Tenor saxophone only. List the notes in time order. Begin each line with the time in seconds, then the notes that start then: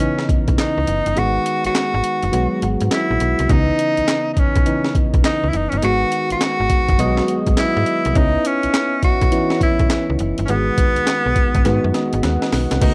Already playing: C#4
0.60 D#4
1.19 F#4
1.66 F#4
2.93 E4
3.52 D#4
4.33 D#4
4.39 C#4
5.26 D#4
5.49 E4
5.57 D#4
5.69 C#4
5.77 D#4
5.84 F#4
6.32 F#4
7.59 E4
8.17 D#4
8.46 C#4
9.04 F#4
9.63 E4
10.45 C#4
10.50 B3
12.83 D#4